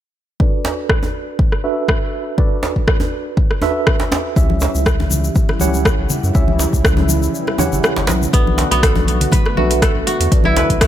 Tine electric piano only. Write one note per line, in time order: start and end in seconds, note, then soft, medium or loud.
0.40 1.61 D4 medium
0.40 1.61 F#4 medium
0.40 1.61 A4 medium
0.40 1.61 B4 medium
0.40 1.61 D5 medium
1.64 2.36 D4 medium
1.64 2.36 F#4 medium
1.64 2.35 A4 medium
1.64 2.35 B4 medium
1.64 2.36 E5 medium
2.38 3.59 D4 medium
2.38 3.59 F#4 medium
2.38 3.59 A4 medium
2.38 3.59 B4 medium
2.38 3.59 D5 medium
3.62 4.34 D4 medium
3.62 4.34 F#4 medium
3.62 4.34 A4 medium
3.62 4.34 B4 medium
3.62 4.34 E5 loud
4.37 5.58 C#4 medium
4.37 5.58 E4 medium
4.37 5.58 G4 medium
4.37 5.58 C#5 medium
4.37 5.58 E5 medium
5.61 6.32 C#4 medium
5.61 6.32 E4 medium
5.61 6.32 G4 medium
5.61 6.32 C#5 medium
5.61 6.32 F#5 loud
6.35 7.56 C#4 medium
6.35 7.56 E4 medium
6.35 7.56 G4 medium
6.35 7.56 C#5 medium
6.35 7.56 E5 medium
7.59 8.31 C#4 medium
7.59 8.31 E4 medium
7.59 8.31 G4 medium
7.59 8.31 C#5 medium
7.59 8.31 F#5 loud
8.34 9.55 D4 medium
8.34 9.55 A4 medium
8.34 9.55 B4 medium
8.34 9.55 D5 medium
9.58 10.29 D4 medium
9.58 10.29 F#4 medium
9.58 10.29 A4 medium
9.58 10.29 B4 medium
9.58 10.29 E5 loud
10.32 10.87 D4 medium
10.32 10.87 F#4 medium
10.32 10.87 A4 medium
10.32 10.87 B4 medium
10.32 10.87 D5 medium